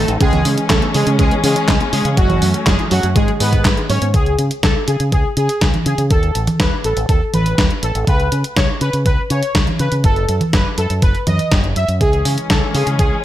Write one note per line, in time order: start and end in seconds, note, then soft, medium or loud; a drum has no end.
0.00 0.18 F#3 medium
0.00 0.11 A3 medium
0.00 0.18 A3 medium
0.00 0.19 D#4 medium
0.00 0.11 A4 medium
0.08 0.19 A1 loud
0.08 0.19 D#4 medium
0.08 closed hi-hat medium
0.21 0.41 C#2 loud
0.21 2.15 E3 medium
0.21 2.15 G#3 medium
0.21 0.51 G#3 medium
0.21 4.10 C#4 loud
0.21 0.32 C#4 loud
0.21 0.51 G#4 loud
0.21 kick loud
0.21 closed hi-hat medium
0.33 0.39 B3 medium
0.33 closed hi-hat soft
0.33 high conga medium
0.45 0.56 C#3 medium
0.45 0.56 C#3 loud
0.45 open hi-hat loud
0.57 0.68 C#4 medium
0.57 closed hi-hat medium
0.70 0.80 C#2 medium
0.70 0.85 A3 medium
0.70 0.81 C#4 loud
0.70 0.85 A4 medium
0.70 kick loud
0.70 snare loud
0.70 clap medium
0.70 closed hi-hat medium
0.70 high conga medium
0.82 0.88 B3 medium
0.82 closed hi-hat soft
0.94 1.05 C#3 medium
0.94 1.10 G#3 medium
0.94 1.10 G#4 medium
0.94 open hi-hat loud
1.07 1.17 C#3 medium
1.07 1.17 C#4 medium
1.07 closed hi-hat medium
1.19 1.29 C#2 loud
1.19 1.34 G#3 medium
1.19 1.31 C#4 loud
1.19 1.34 G#4 medium
1.19 kick loud
1.19 closed hi-hat medium
1.31 1.38 B3 medium
1.31 closed hi-hat soft
1.43 1.54 C#3 loud
1.43 1.54 C#3 medium
1.43 1.74 G#3 medium
1.43 1.74 G#4 loud
1.43 open hi-hat loud
1.56 1.67 C#4 medium
1.56 closed hi-hat medium
1.68 1.78 C#2 medium
1.68 1.80 C#4 loud
1.68 kick loud
1.68 snare loud
1.68 clap medium
1.68 closed hi-hat medium
1.80 1.87 B3 medium
1.80 closed hi-hat soft
1.93 2.03 C#3 loud
1.93 2.03 C#3 medium
1.93 2.08 G#3 medium
1.93 2.08 G#4 medium
1.93 open hi-hat loud
2.05 2.15 C#3 loud
2.05 2.16 C#4 medium
2.05 closed hi-hat medium
2.17 2.38 F#1 loud
2.17 3.15 F#3 medium
2.17 2.48 F#3 medium
2.17 3.15 A3 medium
2.17 2.29 F#4 loud
2.17 2.48 F#4 loud
2.17 kick loud
2.17 closed hi-hat medium
2.30 2.36 E4 medium
2.30 closed hi-hat soft
2.30 high conga medium
2.42 2.52 F#2 medium
2.42 2.53 F#3 medium
2.42 open hi-hat loud
2.54 2.65 F#4 medium
2.54 closed hi-hat medium
2.66 2.77 F#1 medium
2.66 2.82 G#3 medium
2.66 2.78 F#4 loud
2.66 2.82 G#4 medium
2.66 kick loud
2.66 snare loud
2.66 clap loud
2.66 closed hi-hat medium
2.66 high conga medium
2.79 2.85 E4 medium
2.79 closed hi-hat soft
2.91 3.01 F#2 medium
2.91 3.06 F#3 medium
2.91 3.02 F#3 medium
2.91 3.06 F#4 medium
2.91 open hi-hat loud
3.03 3.14 F#2 medium
3.03 3.14 F#4 medium
3.03 closed hi-hat medium
3.15 3.26 G#1 loud
3.15 4.13 D#3 medium
3.15 3.31 G#3 medium
3.15 3.27 G#3 loud
3.15 4.13 G#3 medium
3.15 3.31 G#4 medium
3.15 kick loud
3.15 closed hi-hat medium
3.28 3.34 F#3 medium
3.28 closed hi-hat soft
3.40 3.61 G#2 medium
3.40 3.71 B3 medium
3.40 3.51 G#4 loud
3.40 3.71 B4 loud
3.40 open hi-hat loud
3.53 3.64 D#4 medium
3.53 kick medium
3.53 closed hi-hat medium
3.65 3.75 G#1 medium
3.65 3.76 G#3 medium
3.65 kick loud
3.65 snare loud
3.65 clap medium
3.65 closed hi-hat medium
3.77 3.89 G#4 medium
3.77 closed hi-hat soft
3.89 4.00 G#2 medium
3.89 4.00 F#3 medium
3.89 4.05 C#4 medium
3.89 4.05 C#5 medium
3.89 open hi-hat loud
4.02 4.12 G#2 medium
4.02 4.08 B3 medium
4.02 closed hi-hat medium
4.14 4.35 C#2 medium
4.14 4.45 G#4 loud
4.14 kick loud
4.14 closed hi-hat medium
4.26 closed hi-hat soft
4.38 4.49 C#3 medium
4.38 closed hi-hat medium
4.51 closed hi-hat medium
4.63 4.74 C#2 medium
4.63 4.79 A4 medium
4.63 kick loud
4.63 snare loud
4.63 closed hi-hat medium
4.88 4.98 C#3 medium
4.88 5.03 G#4 medium
4.88 closed hi-hat medium
5.00 5.10 C#3 medium
5.00 closed hi-hat medium
5.12 5.23 C#2 medium
5.12 5.28 G#4 medium
5.12 kick loud
5.12 closed hi-hat medium
5.37 5.47 C#3 medium
5.37 5.68 G#4 medium
5.37 closed hi-hat medium
5.49 closed hi-hat medium
5.61 5.72 C#2 medium
5.61 kick loud
5.61 snare loud
5.61 closed hi-hat medium
5.74 closed hi-hat soft
5.74 high conga medium
5.86 5.96 C#3 medium
5.86 6.02 G#4 medium
5.86 closed hi-hat medium
5.98 6.09 C#3 medium
5.98 closed hi-hat medium
6.11 6.31 D#2 loud
6.11 6.41 A4 loud
6.11 kick loud
6.11 closed hi-hat medium
6.23 closed hi-hat soft
6.35 6.46 A1 medium
6.35 closed hi-hat medium
6.47 closed hi-hat medium
6.47 high conga medium
6.60 6.70 D#2 medium
6.60 6.75 B4 medium
6.60 kick loud
6.60 snare loud
6.60 closed hi-hat medium
6.84 6.95 A1 medium
6.84 7.00 A4 medium
6.84 closed hi-hat medium
6.97 7.07 A1 medium
6.97 closed hi-hat medium
7.09 7.19 D#2 medium
7.09 7.24 A4 medium
7.09 kick loud
7.09 closed hi-hat medium
7.33 7.54 A1 medium
7.33 7.64 B4 loud
7.33 closed hi-hat medium
7.33 high conga medium
7.46 closed hi-hat medium
7.58 7.69 D#2 medium
7.58 kick loud
7.58 snare loud
7.58 closed hi-hat medium
7.71 closed hi-hat soft
7.83 7.93 A1 loud
7.83 7.98 A4 medium
7.83 closed hi-hat medium
7.95 8.05 A1 medium
7.95 closed hi-hat medium
8.07 8.28 C#2 medium
8.07 8.38 B4 loud
8.07 kick loud
8.07 closed hi-hat medium
8.20 closed hi-hat soft
8.32 8.42 C#3 medium
8.32 closed hi-hat medium
8.44 closed hi-hat medium
8.57 8.67 C#2 medium
8.57 8.72 C#5 medium
8.57 kick loud
8.57 snare loud
8.57 closed hi-hat medium
8.81 8.92 C#3 medium
8.81 8.97 B4 medium
8.81 closed hi-hat medium
8.93 9.04 C#3 medium
8.93 closed hi-hat soft
9.06 9.16 C#2 medium
9.06 9.21 B4 medium
9.06 kick loud
9.06 closed hi-hat medium
9.30 9.41 C#3 loud
9.30 9.61 C#5 medium
9.30 closed hi-hat medium
9.43 closed hi-hat soft
9.55 9.65 C#2 medium
9.55 kick loud
9.55 snare loud
9.55 closed hi-hat medium
9.67 closed hi-hat soft
9.67 high conga medium
9.79 9.90 C#3 medium
9.79 9.95 B4 medium
9.79 closed hi-hat medium
9.92 10.02 C#3 medium
9.92 closed hi-hat medium
10.04 10.25 F#1 medium
10.04 10.35 A4 loud
10.04 kick loud
10.04 closed hi-hat medium
10.16 closed hi-hat soft
10.29 10.39 F#2 medium
10.29 closed hi-hat medium
10.41 closed hi-hat soft
10.41 high conga medium
10.53 10.64 F#1 medium
10.53 10.69 B4 medium
10.53 kick loud
10.53 snare loud
10.53 closed hi-hat medium
10.78 10.88 F#2 medium
10.78 10.93 A4 medium
10.78 closed hi-hat medium
10.90 11.01 F#2 medium
10.90 closed hi-hat soft
11.02 11.13 F#1 medium
11.02 11.18 B4 medium
11.02 kick loud
11.02 closed hi-hat medium
11.15 closed hi-hat soft
11.27 11.37 F#2 medium
11.27 11.58 D#5 medium
11.27 closed hi-hat medium
11.27 high conga medium
11.39 closed hi-hat soft
11.52 11.72 F#1 loud
11.52 kick loud
11.52 snare loud
11.52 closed hi-hat medium
11.64 closed hi-hat soft
11.76 11.87 F#2 medium
11.76 11.92 E5 medium
11.76 closed hi-hat medium
11.88 11.99 F#2 medium
11.88 closed hi-hat soft
12.01 12.22 C#2 loud
12.01 13.24 E3 medium
12.01 13.24 G#3 medium
12.01 13.24 C#4 medium
12.01 12.32 G#4 loud
12.01 kick loud
12.01 closed hi-hat medium
12.13 closed hi-hat soft
12.25 12.36 C#3 medium
12.25 open hi-hat loud
12.38 closed hi-hat soft
12.50 12.60 C#2 medium
12.50 12.65 A4 medium
12.50 kick loud
12.50 snare loud
12.50 closed hi-hat medium
12.74 12.85 C#3 medium
12.74 12.90 G#4 medium
12.74 open hi-hat medium
12.87 12.97 C#3 medium
12.87 closed hi-hat soft
12.99 13.10 C#2 medium
12.99 13.15 G#4 medium
12.99 kick loud
12.99 closed hi-hat medium